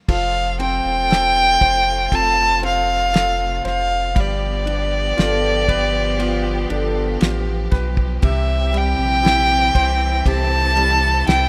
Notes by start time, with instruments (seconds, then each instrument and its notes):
0.08 sub bass F1, string section C3 A3 F4, grand piano F3, steel-string acoustic guitar F3 A4, violin F5, kick, crash
0.59 grand piano C4, steel-string acoustic guitar C4, violin G5, ride
0.85 sub bass E1
1.10 grand piano A4, snare, ride
1.61 sub bass F1, steel-string acoustic guitar C4, grand piano C5, kick, ride
2.12 sub bass F1, steel-string acoustic guitar C4 F4 A4, grand piano A4, violin A5, kick, ride
2.63 grand piano C4, violin F5, ride
3.13 grand piano A4, snare, ride
3.65 sub bass F1, grand piano C5, violin F5, snare, ride
4.15 sub bass G1, steel-string acoustic guitar G2 G4, string section F3 B3 G4, grand piano G3, kick, ride
4.20 violin D5
4.66 steel-string acoustic guitar B3, grand piano D4, ride
5.17 sub bass G1, grand piano F4, steel-string acoustic guitar G4, french horn section A4, snare, ride
5.69 steel-string acoustic guitar B3, french horn section G4, grand piano B4, kick, ride
6.19 steel-string acoustic guitar B3 F4 G4, grand piano F4, french horn section F4, ride
6.70 sub bass G1, grand piano D4, french horn section A4, ride
7.21 sub bass A1, grand piano F4, french horn section G4, snare, ride
7.71 sub bass B1, grand piano B4, kick, snare, ride
7.97 kick
8.22 sub bass C2, steel-string acoustic guitar C3 G4, grand piano C3, string section E3 C4 G4, violin E5, kick, ride
8.73 grand piano G3, steel-string acoustic guitar C4, ride
8.78 violin G5
8.98 sub bass A#1
9.23 grand piano E4, steel-string acoustic guitar G4, snare, ride
9.75 sub bass C2, steel-string acoustic guitar C4, grand piano C5, kick, ride
10.26 sub bass C2, steel-string acoustic guitar C4 E4 G4, grand piano G4, string section A4, violin A5, kick, ride
10.76 grand piano G3, ride
11.27 sub bass C2, grand piano E4, violin G5, snare, ride